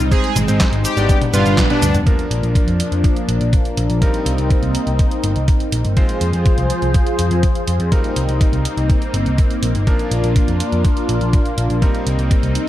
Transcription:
Already playing: analog synth pad D#4
0.00 picked electric bass C2
0.11 analog synth pad G#3 C4, electric grand piano G#3 C4 D#4 C5, analog polysynth G#4, kick, closed hi-hat, cabasa
0.24 closed hi-hat
0.36 picked electric bass G#1, closed hi-hat, high tom, cabasa
0.48 picked electric bass G#1, electric grand piano G#3 C4 D#4 C5, closed hi-hat, cabasa
0.60 kick, snare, clap, closed hi-hat, cabasa
0.72 picked electric bass G#1, closed hi-hat
0.85 analog polysynth G4, closed hi-hat, cabasa
0.97 picked electric bass G#1, electric grand piano G3 B3 D4 D5, closed hi-hat, cabasa
1.09 analog synth pad G3 B3 D4, kick, closed hi-hat, cabasa
1.21 closed hi-hat, high tom
1.33 picked electric bass G1, electric grand piano G3 B3 D4 B4, analog polysynth F4, closed hi-hat, high tom, cabasa
1.46 picked electric bass G1, closed hi-hat, cabasa
1.58 kick, snare, clap, closed hi-hat, high tom, cabasa
1.70 electric grand piano G3 B3 D4 B4, analog polysynth D4, closed hi-hat, high tom
1.82 picked electric bass D2, closed hi-hat, mid tom, cabasa
1.94 picked electric bass F1, closed hi-hat, mid tom, cabasa
2.06 analog synth pad F3 A#3 D4, electric grand piano F3 A#3 D4 A#4, kick, closed hi-hat
2.19 closed hi-hat
2.31 picked electric bass A#1, closed hi-hat
2.43 picked electric bass A#1, closed hi-hat
2.55 kick, closed hi-hat
2.68 picked electric bass F2, closed hi-hat
2.80 closed hi-hat
2.92 picked electric bass F2, closed hi-hat
3.04 kick, closed hi-hat
3.16 closed hi-hat
3.28 picked electric bass A#1, closed hi-hat
3.41 picked electric bass A#1, closed hi-hat
3.53 kick, closed hi-hat
3.65 closed hi-hat
3.77 picked electric bass A#1, closed hi-hat
3.90 picked electric bass A#1, closed hi-hat
4.02 electric grand piano G3 C4 D#4 A#4, analog synth pad C4 D#4, kick, closed hi-hat
4.14 closed hi-hat
4.26 picked electric bass C2, closed hi-hat
4.38 picked electric bass C2, closed hi-hat
4.50 kick, closed hi-hat
4.63 picked electric bass C2, closed hi-hat
4.75 closed hi-hat
4.87 picked electric bass C2, closed hi-hat
4.99 kick, closed hi-hat
5.11 closed hi-hat
5.24 picked electric bass G1, closed hi-hat
5.36 picked electric bass C2, closed hi-hat
5.48 kick, closed hi-hat
5.60 closed hi-hat
5.72 picked electric bass A#1, closed hi-hat
5.85 picked electric bass G1, closed hi-hat
5.97 analog synth pad F3 F4 G#4 C5, electric grand piano G#3 C4 F4 C5, kick, closed hi-hat
6.09 closed hi-hat
6.21 picked electric bass F2, closed hi-hat
6.33 picked electric bass F2, closed hi-hat
6.46 kick, closed hi-hat
6.58 picked electric bass C2, closed hi-hat
6.70 closed hi-hat
6.82 picked electric bass C2, closed hi-hat
6.94 kick, closed hi-hat
7.07 closed hi-hat
7.19 picked electric bass F2, closed hi-hat
7.31 picked electric bass F2, closed hi-hat
7.43 kick, closed hi-hat
7.55 closed hi-hat
7.68 picked electric bass F2, closed hi-hat
7.80 picked electric bass F2, closed hi-hat
7.92 electric grand piano G3 C4 D#4 A#4, analog synth pad A#3 C4 D#4, kick, closed hi-hat
8.04 closed hi-hat
8.16 picked electric bass C2, closed hi-hat
8.29 picked electric bass C2, closed hi-hat
8.41 kick, closed hi-hat
8.53 picked electric bass C2, closed hi-hat
8.65 closed hi-hat
8.77 picked electric bass C2, closed hi-hat
8.90 kick, closed hi-hat
9.02 closed hi-hat
9.14 picked electric bass G1, closed hi-hat
9.26 picked electric bass C2, closed hi-hat
9.38 kick, closed hi-hat
9.51 closed hi-hat
9.63 picked electric bass A#1, closed hi-hat
9.75 picked electric bass G1, closed hi-hat
9.87 electric grand piano F3 A#3 D4 A#4, analog synth pad D4 F4, kick, closed hi-hat
9.99 closed hi-hat
10.11 picked electric bass A#1, closed hi-hat
10.24 picked electric bass A#1, closed hi-hat
10.36 kick, closed hi-hat
10.48 picked electric bass F2, closed hi-hat
10.60 closed hi-hat
10.72 picked electric bass F2, closed hi-hat
10.85 kick, closed hi-hat
10.97 closed hi-hat
11.09 picked electric bass A#1, closed hi-hat
11.21 picked electric bass A#1, closed hi-hat
11.33 kick, closed hi-hat
11.46 closed hi-hat
11.58 picked electric bass A#1, closed hi-hat
11.70 picked electric bass A#1, closed hi-hat
11.82 electric grand piano G3 C4 D#4 A#4, analog synth pad C4 D#4, kick, closed hi-hat
11.95 closed hi-hat
12.07 picked electric bass C2, closed hi-hat
12.19 picked electric bass C2, closed hi-hat
12.31 kick, closed hi-hat
12.43 picked electric bass C2, closed hi-hat
12.55 closed hi-hat

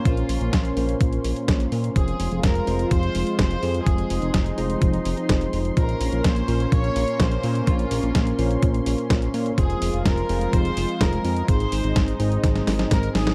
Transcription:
Already playing: analog synth pad A#3 C#4 C6
0.05 analog synth bass A#1, tine electric piano A#2 C#4 F4 A#4 C5, violin section F4, kick, closed hi-hat
0.17 closed hi-hat
0.29 analog synth bass A#1, open hi-hat
0.41 analog synth bass A#1, closed hi-hat
0.53 analog synth bass A#1, kick, snare, closed hi-hat
0.65 closed hi-hat
0.77 analog synth bass A#1, tine electric piano A#2 C#4 F4 A#4 C5, open hi-hat
0.89 closed hi-hat
1.01 analog synth bass A#1, kick, closed hi-hat
1.13 closed hi-hat
1.24 analog synth bass A#1, open hi-hat
1.36 closed hi-hat
1.48 analog synth bass A#1, kick, snare, closed hi-hat
1.60 closed hi-hat
1.72 analog synth bass A#2, open hi-hat
1.84 closed hi-hat
1.96 analog synth bass F1, tine electric piano F3 C4 F4 G#4 C5, analog synth pad G#3 F4 C6, violin section G#4, kick, closed hi-hat
2.08 closed hi-hat
2.20 analog synth bass F1, open hi-hat
2.32 analog synth bass F1, closed hi-hat
2.43 analog synth bass F1, violin section A#4, kick, snare, closed hi-hat
2.55 closed hi-hat
2.67 analog synth bass F1, tine electric piano F3 C4 F4 G#4 C5, open hi-hat
2.79 closed hi-hat
2.91 analog synth bass F1, violin section C5, kick, closed hi-hat
3.03 closed hi-hat
3.15 analog synth bass F1, open hi-hat
3.27 closed hi-hat
3.39 analog synth bass F1, violin section C5, kick, snare, closed hi-hat
3.51 closed hi-hat
3.63 analog synth bass F2, open hi-hat
3.75 closed hi-hat
3.86 analog synth bass F1, tine electric piano F3 C4 F4 G#4 C5, analog synth pad D#4, violin section G#4, kick, closed hi-hat
3.98 closed hi-hat
4.10 analog synth bass F1, open hi-hat
4.22 analog synth bass F1, closed hi-hat
4.34 analog synth bass F1, kick, snare, closed hi-hat
4.46 closed hi-hat
4.58 analog synth bass F1, tine electric piano F3 C4 F4 G#4 C5, open hi-hat
4.70 closed hi-hat
4.82 analog synth bass F1, kick, closed hi-hat
4.94 closed hi-hat
5.05 analog synth bass F1, open hi-hat
5.17 tine electric piano F3 C4 F4 G#4 C5, closed hi-hat
5.29 analog synth bass F1, tine electric piano F3 C4 F4 G#4 C5, kick, snare, closed hi-hat
5.41 closed hi-hat
5.53 analog synth bass F1, open hi-hat
5.65 closed hi-hat
5.77 analog synth bass A#1, tine electric piano A#2 C#4 F4 A#4 C5, analog synth pad A#3 C#4, violin section A#4, kick, closed hi-hat
5.89 closed hi-hat
6.01 analog synth bass A#1, open hi-hat
6.13 analog synth bass A#1, closed hi-hat
6.24 analog synth bass A#1, violin section C5, kick, snare, closed hi-hat
6.36 closed hi-hat
6.48 analog synth bass A#1, tine electric piano A#2 C#4 F4 A#4, open hi-hat
6.60 closed hi-hat
6.72 analog synth bass A#1, violin section C#5, kick, closed hi-hat
6.84 closed hi-hat
6.96 analog synth bass A#1, open hi-hat
7.08 closed hi-hat
7.20 analog synth bass A#1, violin section C5, kick, snare, closed hi-hat
7.32 closed hi-hat
7.43 analog synth bass A#2, open hi-hat
7.55 closed hi-hat
7.67 analog synth bass A#1, tine electric piano A#2 C#4 F4 A#4 C5, violin section F4, kick, closed hi-hat
7.79 closed hi-hat
7.91 analog synth bass A#1, open hi-hat
8.03 analog synth bass A#1, closed hi-hat
8.15 analog synth bass A#1, kick, snare, closed hi-hat
8.27 closed hi-hat
8.39 analog synth bass A#1, tine electric piano A#2 C#4 F4 A#4 C5, open hi-hat
8.51 closed hi-hat
8.62 analog synth bass A#1, kick, closed hi-hat
8.74 closed hi-hat
8.86 analog synth bass A#1, open hi-hat
8.98 closed hi-hat
9.10 analog synth bass A#1, kick, snare, closed hi-hat
9.22 closed hi-hat
9.34 analog synth bass A#2, open hi-hat
9.46 closed hi-hat
9.58 analog synth bass F1, tine electric piano F3 C4 F4 G#4 C5, analog synth pad G#3 F4, violin section G#4, kick, closed hi-hat
9.70 closed hi-hat
9.82 analog synth bass F1, open hi-hat
9.93 analog synth bass F1, closed hi-hat
10.05 analog synth bass F1, violin section A#4, kick, snare, closed hi-hat
10.18 closed hi-hat
10.29 analog synth bass F1, tine electric piano F3 C4 F4 G#4 C5, open hi-hat
10.41 closed hi-hat
10.53 analog synth bass F1, violin section C5, kick, closed hi-hat
10.65 closed hi-hat
10.77 analog synth bass F1, open hi-hat
10.89 closed hi-hat
11.01 analog synth bass F1, violin section A#4, kick, snare, closed hi-hat
11.13 closed hi-hat
11.25 analog synth bass F2, open hi-hat
11.37 closed hi-hat
11.48 analog synth bass G#1, tine electric piano G#2 C4 D#4 G#4 C5, analog synth pad D#4, violin section C5, kick, closed hi-hat
11.60 closed hi-hat
11.72 analog synth bass G#1, open hi-hat
11.84 analog synth bass G#1, closed hi-hat
11.96 analog synth bass G#1, kick, snare, closed hi-hat
12.08 closed hi-hat
12.20 analog synth bass G#1, tine electric piano G#2 C4 D#4 G#4 C5, open hi-hat
12.32 closed hi-hat
12.44 analog synth bass G#1, kick, snare, closed hi-hat
12.56 snare, closed hi-hat
12.67 analog synth bass G#1, snare, open hi-hat
12.79 tine electric piano G#2 C4 D#4 G#4 C5, snare, closed hi-hat
12.91 analog synth bass G#1, tine electric piano G#2 C4 D#4 G#4 C5, violin section A#4, kick, snare, closed hi-hat
13.03 closed hi-hat
13.15 analog synth bass G#1, violin section G#4, snare, open hi-hat
13.27 snare, closed hi-hat

